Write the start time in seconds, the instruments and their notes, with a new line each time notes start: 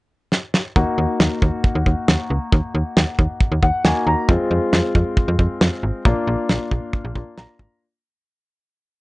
0.32 snare
0.54 snare
0.76 fm bass D#2, grand piano A#3 D#4 F#4, kick
0.98 fm bass D#2
1.20 fm bass D#2, snare
1.42 fm bass D#2, kick
1.64 kick
1.75 fm bass D#2
1.86 fm bass D#2, kick
2.08 fm bass D#2, snare
2.30 fm bass C#2
2.52 fm bass D#2, kick
2.74 fm bass D#2
2.96 fm bass D#2, snare
3.19 fm bass D#2, kick
3.40 kick
3.52 fm bass D#2
3.63 fm bass D#2, grand piano F#5, kick
3.85 fm bass D#2, grand piano A#3 D#4 F#4 G#5, snare
4.07 fm bass D#2, grand piano A#5
4.29 fm bass F2, grand piano G#3 C4 F4, kick
4.51 fm bass F2
4.73 fm bass F2, snare
4.95 fm bass F2, kick
5.17 kick
5.28 fm bass F2
5.39 fm bass F2, kick
5.61 fm bass F2, snare
5.83 fm bass G#1
6.05 fm bass A#1, grand piano A#3 D4 F4, kick
6.27 fm bass A#1
6.49 fm bass A#1, snare
6.71 fm bass A#1, kick
6.93 kick
7.05 fm bass A#1
7.15 fm bass A#1, grand piano A#3 D4 F4, kick
7.38 fm bass A#1, grand piano A#5, snare
7.59 fm bass G#1, kick